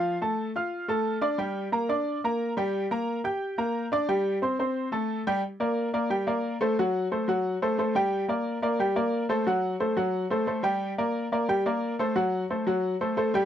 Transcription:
\new Staff \with { instrumentName = "Upright piano" } { \time 4/4 \key g \minor \tempo 4 = 178 <f f' f''>8 <a a' a''>4 <f' f'' f'''>4 <a a' a''>4 <d' d'' d'''>8 | <g g' g''>4 <bes bes' bes''>8 <d' d'' d'''>4 <bes bes' bes''>4 <g g' g''>8~ | <g g' g''>8 <bes bes' bes''>4 <g' g'' g'''>4 <bes bes' bes''>4 <d' d'' d'''>8 | <g g' g''>4 <c' c'' c'''>8 <c' c'' c'''>4 <a a' a''>4 <g g' g''>8 |
r8 <bes bes' d''>4 <bes bes' d''>8 <g g' g''>8 <bes bes' d''>4 <a a' c''>8 | <fis fis' fis''>4 <a a' c''>8 <fis fis' fis''>4 <a a' c''>8 <a a' c''>8 <g g' g''>8~ | <g g' g''>8 <bes bes' d''>4 <bes bes' d''>8 <g g' g''>8 <bes bes' d''>4 <a a' c''>8 | <fis fis' fis''>4 <a a' c''>8 <fis fis' fis''>4 <a a' c''>8 <a a' c''>8 <g g' g''>8~ |
<g g' g''>8 <bes bes' d''>4 <bes bes' d''>8 <g g' g''>8 <bes bes' d''>4 <a a' c''>8 | <fis fis' fis''>4 <a a' c''>8 <fis fis' fis''>4 <a a' c''>8 <a a' c''>8 <g g' g''>8 | }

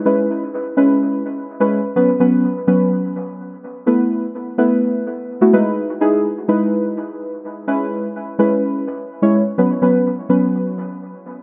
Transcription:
\new Staff \with { instrumentName = "Synth stab" } { \time 4/4 \key cis \minor \tempo 4 = 126 <gis cis' e' b'>8. r8. <gis cis' e' b'>4 r8. <gis cis' e' b'>8 r16 | <fis b cis' b'>16 r16 <fis b cis' b'>8 r8 <fis b cis' b'>4 r4. | <a b e' b'>8. r8. <a b e' b'>4 r8. <a b e' fis'>16 <gis dis' e' b'>8~ | <gis dis' e' b'>16 r16 <gis dis' e' gis'>8 r8 <gis dis' e' b'>4 r4. |
<gis cis' e' b'>8. r8. <gis cis' e' b'>4 r8. <gis cis' e' cis''>8 r16 | <fis b cis' b'>16 r16 <fis b cis' b'>8 r8 <fis b cis' b'>4 r4. | }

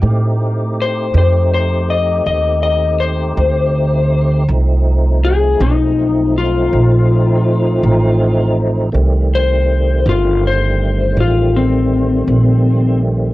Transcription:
<<
  \new Staff \with { instrumentName = "Electric slide guitar" } { \time 12/8 \key f \mixolydian \tempo 4. = 54 r4 c''8 c''8 c''8 ees''8 ees''8 ees''8 c''2 | r4 aes'8 ees'4 f'2. r8 | r8 c''4 f'8 c''4 f'8 c'2 r8 | }
  \new Staff \with { instrumentName = "Tonewheel organ" } { \time 12/8 \key f \mixolydian <a c' ees' g'>1. | <f a c' ees'>1. | <ees g a c'>1. | }
  \new Staff \with { instrumentName = "Upright bass" } { \clef bass \time 12/8 \key f \mixolydian a,4. f,4. ees,4. d,4. | c,4. b,,4. bes,,4. a,,4. | c,4. g,,4. a,,4. bes,,4. | }
>>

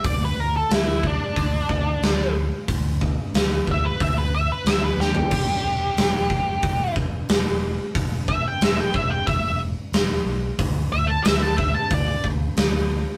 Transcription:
<<
  \new Staff \with { instrumentName = "Lead electric guitar" } { \time 4/4 \key e \minor \tempo 4 = 91 d''16 b'16 ais'16 a'16 e'8 d'2 r8 | r4. e''16 b'16 e''16 b'16 e''16 b'16 e''16 b'16 g'8~ | g'2~ g'8 r4. | r8 e''16 g''16 e''16 g''16 e''16 g''16 e''8 r4. |
r8 e''16 a''16 e''16 a''16 e''16 a''16 d''8 r4. | }
  \new Staff \with { instrumentName = "Picked electric bass" } { \clef bass \time 4/4 \key e \minor d,8 d,8 d,4 d,8 d,8 d,4 | d,4 d,8 d,8 d,4 d,8 dis,8 | e,,8 e,,8 e,,4 e,,8 e,,8 e,,4 | e,,4 e,,8 e,,8 e,,4 e,,8 b,,8 |
d,8 d,8 d,4 d,8 d,8 d,4 | }
  \new DrumStaff \with { instrumentName = "Drums" } \drummode { \time 4/4 <hho bd>4 <hho sn>8 bd8 <hho bd>8 bd8 <hho sn>4 | <hho bd>8 bd8 <hho sn>8 bd8 <hho bd>4 <hho sn>8 sn16 tomfh16 | <cymc hho bd>4 <hho sn>8 bd8 <hho bd>8 bd8 <hho sn>4 | <hho bd>8 bd8 <hho sn>8 bd8 <hho bd>4 <hho sn>4 |
<hho bd>4 <hho sn>8 bd8 <hho bd>8 bd8 <hho sn>4 | }
>>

